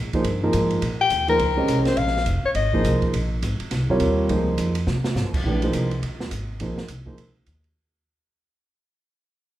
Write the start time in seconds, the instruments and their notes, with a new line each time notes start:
Already playing: upright bass A#2
0.13 grand piano F3 A#3 D#4 G#4 C5, kick, ride
0.24 upright bass G2, ride
0.43 grand piano F3 A#3 D#4 G#4 A#4
0.53 upright bass G#2, hi-hat pedal, ride
0.70 ride
0.82 upright bass A#2, ride
1.01 soprano saxophone G5
1.10 upright bass D#2, hi-hat pedal, ride
1.28 grand piano F3 A#3 D#4 G#4 C5, soprano saxophone A#4, ride
1.39 upright bass C#2, ride
1.57 grand piano G#3 C#4 G4 C5 D#5
1.68 upright bass C2, hi-hat pedal, ride
1.85 soprano saxophone C5, snare, ride
1.96 upright bass A#1, soprano saxophone F5, ride
2.07 snare
2.17 snare
2.26 upright bass F1, hi-hat pedal, ride
2.44 soprano saxophone C#5, muted upright bass stroke
2.55 upright bass G#1, soprano saxophone D#5, ride
2.73 grand piano F3 A#3 D#4 G#4 C5, kick
2.84 upright bass C2, hi-hat pedal, ride
3.02 kick, ride
3.14 upright bass A#1, ride
3.42 upright bass G#1, hi-hat pedal, ride
3.60 muted upright bass stroke, ride
3.71 upright bass C2, snare, ride
3.89 grand piano C3 G3 F4 A#4 C#5, kick
4.00 upright bass D#2, hi-hat pedal, ride
4.29 upright bass C#2, grand piano F3 A#3 D#4 G#4 C5, ride
4.58 upright bass F2, hi-hat pedal, ride
4.75 ride
4.87 upright bass C3, snare
5.04 snare
5.15 upright bass G#2, snare, hi-hat pedal
5.25 upright bass F2
5.34 upright bass C#2, kick, crash
5.44 upright bass A#1, grand piano E3 A3 D4 G4 B4
5.62 grand piano F3 A#3 D#4 G#4 C5, ride
5.73 upright bass C2, hi-hat pedal, ride
5.91 ride
6.02 upright bass D#2, ride
6.20 snare
6.31 upright bass G#1, hi-hat pedal, ride
6.60 upright bass A#1, grand piano F3 A#3 D#4 G#4 C5, ride
6.78 muted upright bass stroke, snare
6.88 upright bass C2, hi-hat pedal, ride
7.06 grand piano F3 A#3 D#4 G#4 C5, kick
7.18 upright bass C#2, ride
7.46 upright bass D#2, hi-hat pedal, ride
7.64 ride